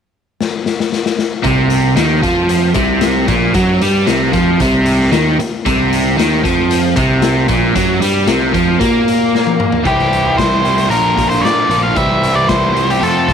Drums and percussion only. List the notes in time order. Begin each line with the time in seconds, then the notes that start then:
0.41 snare
0.66 snare
0.80 snare
0.92 snare
1.06 snare
1.19 snare
1.44 kick, closed hi-hat
1.70 closed hi-hat
1.97 snare, closed hi-hat
2.23 kick, closed hi-hat
2.49 closed hi-hat
2.74 kick, closed hi-hat
3.01 snare, closed hi-hat
3.28 kick, closed hi-hat
3.54 kick, closed hi-hat
3.81 closed hi-hat
4.07 snare, closed hi-hat
4.33 kick, closed hi-hat
4.60 kick, closed hi-hat
4.86 closed hi-hat
5.00 snare
5.13 snare, closed hi-hat
5.40 closed hi-hat
5.66 kick, closed hi-hat
5.93 closed hi-hat
6.19 snare, closed hi-hat
6.45 kick, closed hi-hat
6.71 closed hi-hat
6.96 kick, closed hi-hat
7.22 snare, closed hi-hat
7.48 kick, closed hi-hat
7.76 kick, closed hi-hat
8.02 closed hi-hat
8.27 snare, closed hi-hat
8.54 kick, closed hi-hat
8.81 kick, closed hi-hat
9.08 closed hi-hat
9.35 snare
9.47 high tom
9.60 mid tom
9.72 floor tom
9.85 kick, closed hi-hat
9.99 snare
10.13 closed hi-hat
10.38 kick, snare, closed hi-hat
10.65 closed hi-hat
10.78 closed hi-hat
10.91 closed hi-hat
11.18 kick, closed hi-hat
11.31 closed hi-hat
11.45 snare, closed hi-hat
11.71 closed hi-hat
11.96 kick, closed hi-hat
12.23 closed hi-hat
12.49 kick, snare, closed hi-hat
12.76 closed hi-hat
12.90 closed hi-hat
13.03 closed hi-hat
13.29 kick, closed hi-hat